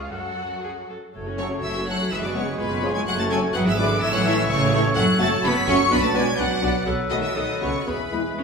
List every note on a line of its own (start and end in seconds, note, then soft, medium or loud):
0.00 0.11 C#2 medium
0.00 0.12 G#3 medium
0.00 0.11 F4 medium
0.00 0.12 G#4 medium
0.00 0.11 B4 medium
0.00 0.12 F5 medium
0.12 0.94 F#2 medium
0.12 0.94 F#3 medium
0.12 0.94 F#4 medium
0.12 0.57 A4 medium
0.12 0.94 A4 medium
0.12 0.88 F#5 loud
0.63 0.71 G#4 medium
0.89 0.97 A4 soft
1.15 1.58 F#1 medium
1.15 2.14 A3 medium
1.15 1.26 A3 medium
1.15 2.13 F#4 medium
1.15 1.26 A4 medium
1.15 2.13 C#5 medium
1.28 1.39 C#4 medium
1.28 1.39 F#4 medium
1.38 1.62 C#3 medium
1.38 1.47 F#3 medium
1.38 1.51 A3 medium
1.38 1.47 C#4 medium
1.38 1.47 A4 medium
1.38 1.51 A4 medium
1.38 1.47 C#5 medium
1.38 1.62 C#5 medium
1.38 1.47 C#6 medium
1.51 1.63 C#4 medium
1.51 1.63 F#4 medium
1.63 2.06 F#1 medium
1.63 1.88 E3 medium
1.63 1.75 A3 medium
1.63 1.75 A4 medium
1.63 1.69 E5 medium
1.63 1.87 E5 medium
1.63 1.87 E6 medium
1.76 1.88 C#4 medium
1.76 1.88 F#4 medium
1.87 1.96 F#3 medium
1.87 2.11 F#3 medium
1.87 2.00 A3 medium
1.87 1.96 C#4 medium
1.87 2.00 A4 medium
1.87 1.96 A4 medium
1.87 1.93 F#5 medium
1.87 2.11 F#5 medium
1.87 2.11 F#6 loud
2.00 2.12 C#4 medium
2.00 2.12 F#4 medium
2.11 2.54 F#1 medium
2.11 2.24 E3 medium
2.11 2.23 G#3 medium
2.11 3.07 G#3 medium
2.11 2.61 G#4 medium
2.11 2.23 G#4 medium
2.11 2.60 B4 medium
2.11 2.17 E5 medium
2.11 2.24 E5 loud
2.11 2.16 E6 loud
2.23 2.36 D3 medium
2.23 2.36 B3 medium
2.23 2.36 F#4 medium
2.23 2.35 D5 medium
2.23 2.29 D5 medium
2.23 2.35 D6 medium
2.35 2.60 C#3 medium
2.35 2.47 G#3 medium
2.35 2.44 G#3 medium
2.35 2.44 B3 medium
2.35 2.47 G#4 medium
2.35 2.44 G#4 medium
2.35 2.59 C#5 medium
2.35 2.44 C#5 medium
2.35 2.59 C#6 medium
2.47 2.59 B3 medium
2.47 2.59 F#4 medium
2.58 3.02 F#1 medium
2.58 2.95 B2 medium
2.58 2.70 G#3 medium
2.58 2.70 F4 medium
2.58 3.07 F4 medium
2.58 2.94 B4 loud
2.58 2.95 B4 medium
2.58 3.57 C#5 medium
2.58 2.94 B5 medium
2.71 2.83 C#4 medium
2.71 2.83 G#4 medium
2.83 2.91 F3 medium
2.83 2.95 G#3 medium
2.83 2.91 C#4 medium
2.83 2.95 F4 medium
2.83 2.92 G#4 medium
2.94 3.00 G#3 loud
2.94 3.07 C#4 medium
2.94 3.07 G#4 medium
2.94 3.00 G#5 medium
2.94 3.07 G#5 medium
2.94 3.00 G#6 loud
3.06 3.50 F#1 loud
3.06 3.19 F#3 loud
3.06 3.18 A3 medium
3.06 3.56 A3 medium
3.06 3.57 F#4 medium
3.06 3.18 A4 medium
3.06 3.13 F#5 loud
3.06 3.12 F#5 loud
3.06 3.19 F#6 loud
3.19 3.24 A3 loud
3.19 3.31 C#4 medium
3.19 3.31 F#4 medium
3.19 3.25 A5 medium
3.19 3.24 A5 loud
3.19 3.24 A6 loud
3.30 3.39 F#3 medium
3.30 3.39 G#3 loud
3.30 3.43 A3 medium
3.30 3.39 C#4 medium
3.30 3.42 A4 medium
3.30 3.39 A4 medium
3.30 3.38 G#5 medium
3.30 3.40 G#5 loud
3.30 3.39 G#6 loud
3.42 3.55 C#4 medium
3.42 3.55 F#4 medium
3.54 3.97 G#1 loud
3.54 4.96 E3 medium
3.54 3.67 F#3 loud
3.54 3.66 G#3 medium
3.54 4.03 G#4 medium
3.54 3.66 B4 medium
3.54 4.02 B4 medium
3.54 3.60 F#5 loud
3.54 3.67 F#5 loud
3.54 3.60 F#6 loud
3.66 3.79 E3 loud
3.66 3.79 B3 medium
3.66 3.78 G#4 medium
3.66 3.72 E5 medium
3.66 3.79 E5 medium
3.66 3.79 E6 loud
3.78 4.02 D3 loud
3.78 3.90 G#3 medium
3.78 3.87 G#3 medium
3.78 3.87 E4 medium
3.78 3.90 B4 medium
3.78 3.87 B4 medium
3.78 4.02 D5 loud
3.78 3.85 D5 medium
3.78 4.02 D6 loud
3.90 4.02 B3 medium
3.90 4.02 G#4 medium
4.02 4.44 A1 loud
4.02 4.14 E3 loud
4.02 4.13 E4 medium
4.02 5.91 A4 loud
4.02 4.13 A4 medium
4.02 5.88 C#5 medium
4.02 4.08 E5 loud
4.02 4.15 E5 loud
4.02 4.14 E6 loud
4.13 4.26 F#3 loud
4.13 4.26 C#4 medium
4.13 4.26 C#5 medium
4.13 4.26 F#5 loud
4.13 4.26 F#5 medium
4.13 4.26 F#6 loud
4.24 4.50 E3 loud
4.24 4.34 A3 loud
4.24 4.37 E4 medium
4.24 4.34 E4 medium
4.24 4.37 A4 medium
4.24 4.34 C#5 medium
4.24 4.34 E5 loud
4.24 4.50 E5 loud
4.24 4.49 E6 loud
4.36 4.49 C#4 medium
4.36 4.49 C#5 medium
4.48 4.91 A1 loud
4.48 4.84 C#3 loud
4.48 4.60 E4 medium
4.48 4.60 A4 medium
4.48 4.85 C#5 loud
4.48 4.84 C#5 loud
4.48 4.84 C#6 loud
4.60 4.72 C#4 medium
4.60 4.72 C#5 medium
4.72 4.81 A3 loud
4.72 4.84 E4 medium
4.72 4.81 E4 medium
4.72 4.84 A4 medium
4.72 4.81 C#5 loud
4.83 4.94 C#4 medium
4.83 4.96 C#5 medium
4.95 5.05 F#1 loud
4.95 5.19 F#3 loud
4.95 6.83 F#3 loud
4.95 5.04 C#4 loud
4.95 5.04 A4 loud
4.95 5.03 F#5 loud
4.95 5.19 F#6 loud
5.19 5.29 F#1 medium
5.19 5.28 A3 loud
5.19 5.27 C#4 medium
5.19 5.28 F#4 loud
5.19 5.27 A4 medium
5.19 5.28 C#5 medium
5.19 5.44 A5 loud
5.19 5.27 A5 loud
5.19 5.28 A6 loud
5.43 5.53 F#1 loud
5.43 5.68 B3 loud
5.43 5.52 C#4 medium
5.43 5.51 A4 medium
5.43 5.50 B5 loud
5.43 5.68 B5 loud
5.43 5.68 B6 loud
5.67 5.77 F#1 loud
5.67 5.76 A3 medium
5.67 5.75 C#4 medium
5.67 5.76 C#4 loud
5.67 5.76 F#4 loud
5.67 5.75 A4 medium
5.67 5.76 C#5 loud
5.67 5.91 C#6 loud
5.67 5.92 C#6 loud
5.67 5.92 C#7 loud
5.91 6.00 B1 loud
5.91 6.03 B3 loud
5.91 5.99 D4 loud
5.91 5.99 B4 medium
5.91 6.85 B4 medium
5.91 6.85 D5 medium
5.91 6.03 B5 loud
5.91 6.03 B6 loud
6.03 6.08 A3 loud
6.03 6.15 A5 loud
6.03 6.16 A5 loud
6.03 6.16 A6 loud
6.14 6.24 B1 medium
6.14 6.38 G#3 medium
6.14 6.23 B3 medium
6.14 6.24 D4 medium
6.14 6.23 F#4 medium
6.14 6.23 B4 medium
6.14 6.23 D5 medium
6.14 6.23 G#5 loud
6.14 6.39 G#5 loud
6.14 6.39 G#6 loud
6.38 6.47 B1 medium
6.38 6.86 F#3 loud
6.38 6.47 D4 medium
6.38 6.47 B4 medium
6.38 6.85 F#5 loud
6.38 6.87 F#5 medium
6.38 6.87 F#6 loud
6.61 6.71 B1 medium
6.61 6.70 B3 medium
6.61 6.70 D4 medium
6.61 6.70 F#4 medium
6.61 6.69 B4 medium
6.61 6.71 D5 medium
6.86 6.95 B1 medium
6.86 7.33 F#3 medium
6.86 6.94 B3 medium
6.86 6.94 A4 medium
6.86 7.33 A4 medium
6.86 7.33 B4 medium
7.10 7.20 B1 medium
7.10 7.22 D#3 medium
7.10 7.20 A3 medium
7.10 7.19 B3 medium
7.10 7.20 F#4 medium
7.10 7.19 A4 medium
7.10 7.20 B4 medium
7.10 7.15 D#5 loud
7.10 7.17 D#5 medium
7.10 7.16 D#6 loud
7.22 7.36 E3 loud
7.22 7.35 E5 medium
7.22 7.29 E5 medium
7.22 7.36 E6 loud
7.35 7.45 B1 medium
7.35 7.61 D#3 loud
7.35 7.89 F#3 medium
7.35 7.44 B3 medium
7.35 7.44 A4 medium
7.35 7.89 A4 medium
7.35 7.72 B4 medium
7.35 7.61 D#5 medium
7.35 7.42 D#5 medium
7.35 7.61 D#6 medium
7.61 7.71 B1 medium
7.61 7.86 C#3 medium
7.61 7.70 A3 medium
7.61 7.70 B3 medium
7.61 7.71 F#4 medium
7.61 7.69 A4 medium
7.61 7.71 B4 medium
7.61 7.67 C#5 medium
7.61 7.87 C#5 medium
7.61 7.87 C#6 loud
7.86 7.96 E2 medium
7.86 8.37 B2 medium
7.86 8.43 E3 medium
7.86 7.95 B3 medium
7.86 7.94 G#4 medium
7.86 8.43 G#4 medium
7.86 8.37 B4 medium
7.86 8.43 B4 medium
7.86 8.38 B5 loud
8.12 8.21 E2 medium
8.12 8.21 G#3 medium
8.12 8.21 B3 medium
8.12 8.21 E4 medium
8.12 8.21 G#4 medium
8.12 8.22 B4 medium
8.38 8.43 E2 medium
8.38 8.43 C#4 medium